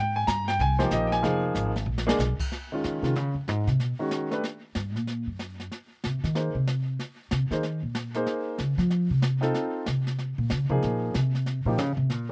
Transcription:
0.00 0.26 G#2 medium
0.00 0.16 G5 loud
0.16 0.27 G#5 loud
0.27 0.58 G2 medium
0.27 0.47 A#5 loud
0.27 kick soft
0.27 snare medium
0.27 hi-hat pedal medium
0.48 0.59 G5 loud
0.48 snare medium
0.59 0.90 C2 loud
0.59 0.80 G#5 loud
0.59 brush sweep soft
0.59 kick soft
0.59 snare soft
0.79 1.21 F3 medium
0.79 1.21 A#3 medium
0.79 1.21 D#4 medium
0.79 1.21 G4 medium
0.79 0.90 C5 medium
0.79 snare medium
0.91 1.22 A#1 loud
0.91 1.12 D#5 medium
0.91 kick soft
0.91 snare medium
0.91 hi-hat pedal medium
1.07 1.09 G5 medium
1.12 1.42 G#5 loud
1.12 snare soft
1.23 1.54 F1 medium
1.23 1.71 F3 medium
1.23 1.71 A#3 medium
1.23 1.71 D#4 medium
1.23 1.72 G#4 medium
1.23 brush sweep soft
1.23 kick soft
1.23 snare soft
1.55 1.85 G#1 medium
1.55 kick soft
1.55 snare medium
1.55 hi-hat pedal medium
1.76 snare soft
1.86 2.18 A#1 loud
1.98 snare medium
2.07 2.18 G#3 medium
2.07 2.18 A#3 medium
2.07 2.18 D4 medium
2.07 2.18 G#4 medium
2.07 snare medium
2.19 2.37 B1 loud
2.19 snare medium
2.19 hi-hat pedal medium
2.40 kick medium
2.40 crash medium
2.52 brush sweep soft
2.52 snare soft
2.72 3.01 D#3 soft
2.72 3.02 G#3 soft
2.72 3.02 C#4 soft
2.72 3.02 F4 medium
2.84 3.02 D#3 medium
2.84 snare medium
3.03 3.16 C3 medium
3.03 3.14 D#3 medium
3.03 3.14 G#3 soft
3.03 3.14 C#4 soft
3.03 3.14 F4 medium
3.03 snare soft
3.16 3.34 C#3 medium
3.16 brush sweep soft
3.16 snare soft
3.34 3.49 F2 medium
3.48 3.67 G#2 medium
3.48 snare medium
3.67 3.80 C3 medium
3.67 snare soft
3.80 3.92 B2 medium
3.80 brush sweep soft
3.80 snare soft
3.99 4.29 D#3 medium
3.99 4.29 G#3 medium
3.99 4.29 C#4 medium
3.99 4.30 F#4 medium
4.11 snare medium
4.31 4.42 A3 medium
4.31 4.42 D4 medium
4.31 4.42 G4 medium
4.31 4.43 B4 medium
4.31 snare soft
4.44 brush sweep soft
4.44 snare soft
4.75 4.95 G2 medium
4.75 snare medium
4.95 5.26 A#2 loud
4.95 snare soft
5.07 brush sweep soft
5.07 snare soft
5.27 5.68 F#2 medium
5.39 snare medium
5.60 snare soft
5.72 brush sweep soft
5.72 snare soft
6.04 6.23 C3 medium
6.04 snare medium
6.24 6.53 D#3 medium
6.24 snare soft
6.35 6.53 A#3 soft
6.35 6.53 D#4 soft
6.35 6.53 G#4 soft
6.35 6.53 C5 medium
6.35 brush sweep soft
6.35 snare soft
6.55 6.96 C3 medium
6.68 snare medium
6.99 brush sweep medium
6.99 snare soft
7.31 7.50 C3 medium
7.31 snare medium
7.51 7.80 D#3 medium
7.51 7.61 A#3 medium
7.51 7.62 D#4 medium
7.51 7.62 G#4 medium
7.51 7.62 C5 medium
7.51 snare soft
7.63 brush sweep soft
7.63 snare soft
7.83 8.24 A#2 medium
7.95 snare medium
8.14 8.56 A#3 medium
8.14 8.57 D#4 medium
8.14 8.57 G#4 medium
8.14 8.57 C5 medium
8.14 snare soft
8.26 brush sweep soft
8.26 snare soft
8.58 8.77 C#3 medium
8.58 snare medium
8.78 9.08 F3 loud
8.78 snare soft
8.90 brush sweep medium
8.90 snare soft
9.10 9.51 C3 medium
9.22 snare medium
9.41 9.83 C4 medium
9.41 9.83 D#4 medium
9.41 9.84 F4 medium
9.41 9.84 A4 medium
9.41 snare soft
9.54 brush sweep soft
9.54 snare soft
9.86 10.35 C3 medium
9.86 snare medium
10.07 snare soft
10.19 brush sweep soft
10.19 snare soft
10.38 10.50 A#2 medium
10.50 10.69 C#3 medium
10.50 snare medium
10.69 10.81 C3 medium
10.69 11.11 F3 medium
10.69 11.12 A#3 medium
10.69 11.12 D#4 medium
10.69 11.12 G#4 medium
10.82 11.14 A#2 medium
10.82 brush sweep soft
10.82 snare soft
11.14 11.63 C3 medium
11.14 snare medium
11.35 snare soft
11.46 brush sweep medium
11.46 snare soft
11.65 11.79 A#2 medium
11.65 11.77 F3 medium
11.65 11.77 A#3 medium
11.65 11.77 D#4 medium
11.65 11.78 G4 medium
11.78 11.96 C#3 medium
11.78 snare medium
11.97 12.10 C3 medium
12.10 12.32 A#2 medium
12.10 brush sweep soft
12.10 snare soft

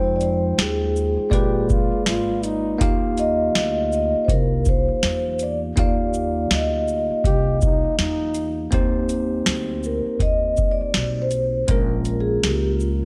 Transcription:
0.00 0.54 F2 loud
0.00 1.28 G#3 medium
0.00 1.28 D#4 medium
0.00 1.29 F4 medium
0.00 0.18 C5 medium
0.00 1.29 C5 medium
0.00 1.29 G5 medium
0.16 0.21 D5 medium
0.21 0.56 C5 medium
0.21 closed hi-hat soft
0.21 shaker soft
0.58 1.14 D#2 loud
0.58 2.03 G#4 medium
0.58 snare loud
0.58 closed hi-hat medium
0.96 shaker soft
1.17 muted upright bass stroke soft
1.30 1.88 A#1 loud
1.30 2.78 G#3 medium
1.30 2.76 A#3 medium
1.30 2.77 F4 medium
1.30 1.72 G4 loud
1.30 2.78 B4 medium
1.30 2.77 D5 medium
1.30 kick medium
1.30 closed hi-hat medium
1.70 2.06 F4 medium
1.70 kick medium
1.70 shaker medium
1.92 muted upright bass stroke soft
2.06 2.77 G#1 medium
2.06 2.46 F4 medium
2.06 snare loud
2.06 closed hi-hat medium
2.43 3.03 D#4 medium
2.43 closed hi-hat medium
2.43 shaker medium
2.79 3.51 D#2 loud
2.79 5.72 A#3 medium
2.79 5.72 D#4 medium
2.79 5.73 F4 medium
2.79 5.73 G4 medium
2.79 5.74 F5 medium
2.79 kick loud
2.79 closed hi-hat medium
3.18 3.93 D#5 loud
3.18 closed hi-hat medium
3.18 shaker soft
3.55 4.11 D2 medium
3.55 snare loud
3.55 closed hi-hat medium
3.92 4.25 D#5 medium
3.92 shaker soft
4.15 muted upright bass stroke soft
4.25 4.85 C2 medium
4.25 4.29 C5 medium
4.25 kick medium
4.29 4.64 A#4 medium
4.29 closed hi-hat medium
4.65 5.43 C5 medium
4.65 kick medium
4.65 shaker medium
4.88 muted upright bass stroke soft
5.03 5.73 E2 medium
5.03 snare loud
5.03 closed hi-hat medium
5.39 5.59 D5 medium
5.39 closed hi-hat medium
5.39 shaker medium
5.76 6.47 D#2 loud
5.76 8.68 A#3 medium
5.76 8.69 D#4 medium
5.76 8.69 F4 medium
5.76 8.70 G4 medium
5.76 6.54 D5 medium
5.76 8.70 F5 medium
5.76 kick loud
5.76 closed hi-hat medium
6.14 shaker medium
6.51 7.07 D2 medium
6.51 7.96 D#5 medium
6.51 snare loud
6.51 closed hi-hat medium
6.88 shaker soft
7.10 muted upright bass stroke soft
7.24 7.81 C2 medium
7.24 7.60 G4 loud
7.24 kick medium
7.24 closed hi-hat medium
7.61 7.97 D#4 medium
7.61 kick medium
7.61 shaker medium
7.84 muted upright bass stroke soft
7.99 8.69 E2 medium
7.99 8.69 D#4 medium
7.99 snare loud
7.99 closed hi-hat medium
8.35 closed hi-hat medium
8.35 shaker medium
8.71 9.43 D#2 medium
8.71 11.64 A#3 medium
8.71 11.65 C4 medium
8.71 11.65 D#4 medium
8.71 11.66 G4 medium
8.71 11.66 C5 medium
8.71 kick medium
8.71 closed hi-hat medium
9.09 closed hi-hat soft
9.09 shaker soft
9.46 10.03 D2 medium
9.46 snare loud
9.46 closed hi-hat medium
9.83 10.23 A#4 medium
9.83 shaker soft
10.06 muted upright bass stroke soft
10.20 10.77 D#2 medium
10.20 10.72 D#5 loud
10.20 kick medium
10.20 closed hi-hat medium
10.57 kick medium
10.57 shaker medium
10.71 11.22 D5 medium
10.81 muted upright bass stroke soft
10.94 11.65 B1 medium
10.94 snare loud
10.94 closed hi-hat medium
11.22 11.72 C5 medium
11.31 closed hi-hat soft
11.31 shaker medium
11.68 12.39 A#1 loud
11.68 13.05 G#3 medium
11.68 13.05 A#3 medium
11.68 13.05 C#4 medium
11.68 13.05 F4 medium
11.68 12.21 A#4 medium
11.68 13.05 A#4 medium
11.68 kick loud
11.68 closed hi-hat medium
12.05 closed hi-hat medium
12.05 shaker medium
12.20 12.45 G#4 medium
12.43 13.00 C#2 medium
12.43 12.70 G4 medium
12.43 snare loud
12.43 closed hi-hat medium
12.71 13.05 F4 medium
12.80 shaker soft

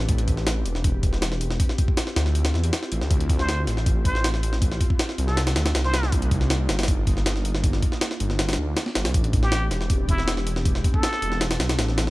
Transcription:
0.00 1.56 C4 medium
0.00 1.56 D4 medium
0.00 5.33 G4 medium
0.00 1.56 B4 medium
0.09 0.64 A1 loud
0.09 kick loud
0.09 open hi-hat medium
0.18 closed hi-hat soft
0.28 kick loud
0.28 open hi-hat medium
0.37 snare soft
0.47 snare loud
0.47 open hi-hat medium
0.66 1.58 E1 loud
0.66 open hi-hat medium
0.75 snare soft
0.84 kick loud
0.84 open hi-hat medium
1.03 kick loud
1.03 open hi-hat medium
1.13 snare soft
1.22 snare loud
1.22 open hi-hat medium
1.32 snare soft
1.41 open hi-hat medium
1.50 snare medium
1.60 5.34 C4 medium
1.60 5.34 E4 medium
1.60 9.11 F4 medium
1.60 kick loud
1.60 open hi-hat medium
1.69 snare soft
1.78 kick loud
1.78 open hi-hat medium
1.88 kick loud
1.97 snare loud
1.97 open hi-hat medium
2.07 snare soft
2.16 2.53 D2 loud
2.16 snare loud
2.16 open hi-hat medium
2.26 snare soft
2.35 open hi-hat medium
2.45 snare loud
2.45 open hi-hat medium
2.54 2.71 E2 medium
2.54 snare soft
2.64 open hi-hat medium
2.73 snare loud
2.73 open hi-hat medium
2.83 snare soft
2.92 3.03 A1 medium
2.92 open hi-hat medium
3.01 3.10 D2 medium
3.01 snare medium
3.11 3.66 D2 loud
3.11 kick loud
3.11 open hi-hat medium
3.20 closed hi-hat soft
3.30 kick loud
3.30 open hi-hat medium
3.39 3.62 C5 loud
3.39 snare soft
3.49 snare loud
3.49 open hi-hat medium
3.67 4.79 A1 loud
3.67 snare soft
3.67 open hi-hat medium
3.77 snare soft
3.86 kick loud
3.86 open hi-hat medium
4.05 4.28 C5 loud
4.05 kick loud
4.05 open hi-hat medium
4.15 snare soft
4.24 snare loud
4.24 open hi-hat medium
4.34 snare soft
4.43 open hi-hat medium
4.53 snare medium
4.62 kick loud
4.62 open hi-hat medium
4.72 snare soft
4.81 kick loud
4.81 open hi-hat medium
4.90 kick loud
4.99 snare loud
4.99 open hi-hat medium
5.09 snare soft
5.18 5.55 C2 loud
5.18 open hi-hat medium
5.28 5.41 A4 medium
5.28 snare soft
5.37 9.11 A#3 medium
5.37 12.10 D4 medium
5.37 9.11 D#4 medium
5.37 snare loud
5.37 open hi-hat medium
5.47 snare loud
5.47 open hi-hat medium
5.56 5.73 D2 medium
5.56 snare loud
5.56 open hi-hat medium
5.66 snare loud
5.66 open hi-hat medium
5.75 6.11 C2 medium
5.75 snare loud
5.75 open hi-hat medium
5.84 6.12 C5 loud
5.84 snare soft
5.94 snare loud
5.94 open hi-hat medium
6.03 snare medium
6.12 6.68 C2 loud
6.12 kick loud
6.12 open hi-hat medium
6.22 closed hi-hat soft
6.31 kick loud
6.31 open hi-hat medium
6.41 snare soft
6.50 snare loud
6.50 open hi-hat medium
6.69 7.81 G1 loud
6.69 snare loud
6.69 open hi-hat medium
6.79 snare medium
6.79 open hi-hat medium
6.83 snare medium
6.83 open hi-hat medium
6.88 kick loud
6.88 open hi-hat medium
7.07 kick medium
7.07 open hi-hat medium
7.17 snare soft
7.26 snare loud
7.26 open hi-hat medium
7.36 snare soft
7.45 open hi-hat medium
7.55 snare medium
7.64 kick loud
7.64 open hi-hat medium
7.73 snare soft
7.82 kick medium
7.82 open hi-hat medium
7.92 snare soft
8.01 snare loud
8.01 open hi-hat medium
8.11 snare soft
8.20 8.57 G1 loud
8.20 open hi-hat medium
8.30 snare soft
8.39 snare loud
8.39 open hi-hat medium
8.49 snare medium
8.49 open hi-hat medium
8.53 snare medium
8.53 open hi-hat medium
8.58 8.75 D2 medium
8.77 snare loud
8.77 open hi-hat medium
8.86 snare soft
8.95 9.07 G1 medium
8.95 snare loud
8.95 open hi-hat medium
9.05 9.14 C2 medium
9.05 snare loud
9.05 open hi-hat medium
9.14 9.70 A1 loud
9.14 12.10 B3 medium
9.14 12.10 C4 medium
9.14 11.39 G4 medium
9.14 kick loud
9.14 open hi-hat medium
9.24 closed hi-hat soft
9.33 kick loud
9.33 open hi-hat medium
9.43 9.66 G4 loud
9.43 snare soft
9.52 snare loud
9.52 open hi-hat medium
9.71 10.83 E1 loud
9.71 snare soft
9.71 open hi-hat medium
9.81 snare soft
9.90 kick loud
9.90 open hi-hat medium
10.09 10.32 E4 medium
10.09 kick loud
10.09 open hi-hat medium
10.18 snare soft
10.28 snare loud
10.28 open hi-hat medium
10.37 snare soft
10.47 open hi-hat medium
10.56 snare medium
10.65 kick loud
10.65 open hi-hat medium
10.75 snare soft
10.84 kick loud
10.84 open hi-hat medium
10.94 11.47 A4 loud
10.94 kick loud
11.03 snare loud
11.03 open hi-hat medium
11.13 snare soft
11.22 11.58 E1 loud
11.22 open hi-hat medium
11.32 snare soft
11.41 12.10 A4 medium
11.41 snare loud
11.41 open hi-hat medium
11.51 snare loud
11.51 open hi-hat medium
11.60 11.77 B1 medium
11.60 snare loud
11.60 open hi-hat medium
11.69 snare loud
11.69 open hi-hat medium
11.79 12.10 A1 loud
11.79 snare loud
11.79 open hi-hat medium
11.89 snare soft
11.98 snare loud
11.98 open hi-hat medium

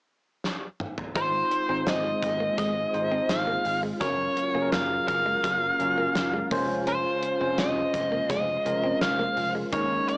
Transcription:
0.44 snare medium
0.80 mid tom medium
0.98 floor tom medium
1.15 1.41 G#1 loud
1.15 3.99 D#3 medium
1.15 1.52 G#3 medium
1.15 1.29 G#3 medium
1.15 3.99 G#3 medium
1.15 3.99 C4 medium
1.15 1.52 D#4 medium
1.15 1.52 F4 medium
1.15 9.69 F4 medium
1.15 1.52 C5 medium
1.15 1.87 C5 medium
1.15 kick loud
1.15 closed hi-hat loud
1.51 muted clean electric guitar stroke soft
1.51 closed hi-hat medium
1.69 1.82 G#1 medium
1.69 2.53 G#3 medium
1.69 1.82 C4 medium
1.69 2.54 D#4 medium
1.69 2.54 F4 medium
1.69 2.54 C5 medium
1.87 2.13 G#1 medium
1.87 2.00 C4 medium
1.87 2.58 D#5 medium
1.87 snare loud
1.87 closed hi-hat medium
2.05 muted clean electric guitar stroke soft
2.23 2.48 G#1 medium
2.23 kick medium
2.23 closed hi-hat medium
2.40 2.54 A#3 medium
2.58 2.84 G#1 loud
2.58 2.72 G#3 medium
2.58 3.32 D#5 medium
2.58 kick medium
2.58 closed hi-hat medium
2.93 3.20 G#1 medium
2.93 3.66 G#3 medium
2.93 3.66 D#4 medium
2.93 3.67 F4 medium
2.93 3.67 C5 medium
2.93 muted clean electric guitar stroke soft
2.93 closed hi-hat medium
3.12 3.25 C4 medium
3.30 3.56 G#1 medium
3.30 3.80 F5 loud
3.30 snare loud
3.30 closed hi-hat medium
3.48 3.61 A#3 medium
3.65 3.91 G#1 medium
3.65 muted clean electric guitar stroke soft
3.65 open hi-hat medium
3.83 3.97 G#3 medium
4.01 4.27 F#1 loud
4.01 10.17 C#3 medium
4.01 4.37 F#3 medium
4.01 4.14 F#3 medium
4.01 6.49 F#3 medium
4.01 6.49 A#3 medium
4.01 4.37 C#4 medium
4.01 4.38 F4 medium
4.01 4.38 A#4 medium
4.01 4.69 C#5 medium
4.01 kick loud
4.01 closed hi-hat loud
4.37 muted clean electric guitar stroke soft
4.37 closed hi-hat medium
4.54 4.68 F#1 medium
4.54 5.39 F#3 medium
4.54 4.68 A#3 medium
4.54 5.39 C#4 medium
4.54 5.40 F4 medium
4.54 4.62 G#4 medium
4.62 5.43 A#4 medium
4.72 4.98 F#1 medium
4.72 4.86 A#3 medium
4.72 5.07 F5 loud
4.72 snare loud
4.72 closed hi-hat medium
4.90 muted clean electric guitar stroke soft
5.08 5.34 F#1 medium
5.08 6.47 F5 medium
5.08 kick medium
5.08 closed hi-hat medium
5.26 5.39 G#3 medium
5.44 5.70 F#1 loud
5.44 5.57 F#3 medium
5.44 kick medium
5.44 closed hi-hat medium
5.79 6.06 F#1 medium
5.79 6.51 F#3 medium
5.79 6.50 C#4 medium
5.79 6.51 F4 medium
5.79 6.52 A#4 medium
5.79 muted clean electric guitar stroke soft
5.79 closed hi-hat medium
5.98 6.11 A#3 medium
6.15 6.41 F#1 medium
6.15 muted clean electric guitar stroke soft
6.15 snare loud
6.15 closed hi-hat medium
6.33 6.47 G#3 medium
6.51 7.03 F1 medium
6.51 9.69 G#3 medium
6.51 7.22 G#3 medium
6.51 6.64 A#3 medium
6.51 7.23 C#4 medium
6.51 7.23 F4 medium
6.51 9.69 C5 medium
6.51 7.23 C5 medium
6.51 kick loud
6.51 open hi-hat medium
6.87 7.00 C#4 medium
6.87 7.59 C5 medium
6.87 closed hi-hat loud
7.23 muted clean electric guitar stroke soft
7.23 closed hi-hat medium
7.40 7.53 F1 medium
7.40 8.25 G#3 medium
7.40 7.54 C4 medium
7.40 8.25 C#4 medium
7.40 8.25 F4 medium
7.40 8.25 C5 medium
7.58 7.84 F1 medium
7.58 7.72 C4 medium
7.58 8.29 D#5 medium
7.58 snare loud
7.58 closed hi-hat medium
7.76 muted clean electric guitar stroke soft
7.94 8.20 F1 medium
7.94 kick medium
7.94 closed hi-hat medium
8.12 8.25 A#3 medium
8.30 8.55 F1 loud
8.30 8.43 G#3 medium
8.30 8.98 D#5 loud
8.30 kick medium
8.30 closed hi-hat medium
8.65 8.91 F1 medium
8.65 9.38 G#3 medium
8.65 9.38 C#4 medium
8.65 9.38 F4 medium
8.65 9.38 A#4 medium
8.65 muted clean electric guitar stroke soft
8.65 closed hi-hat medium
8.84 8.97 C4 medium
9.01 9.27 F1 medium
9.01 9.51 F5 loud
9.01 snare loud
9.01 closed hi-hat medium
9.19 9.33 A#3 medium
9.37 9.63 F1 medium
9.37 muted clean electric guitar stroke soft
9.37 open hi-hat medium
9.55 9.68 G#3 medium
9.72 9.98 D#2 medium
9.72 10.17 D#3 medium
9.72 10.09 G#3 medium
9.72 10.17 G#3 medium
9.72 10.17 A#3 medium
9.72 10.09 C#4 medium
9.72 10.17 D#4 medium
9.72 9.86 D#4 medium
9.72 10.09 D#4 medium
9.72 10.09 A#4 medium
9.72 10.09 C#5 medium
9.72 kick loud
9.72 closed hi-hat loud
10.09 10.17 D#5 medium
10.09 muted clean electric guitar stroke soft
10.09 closed hi-hat medium

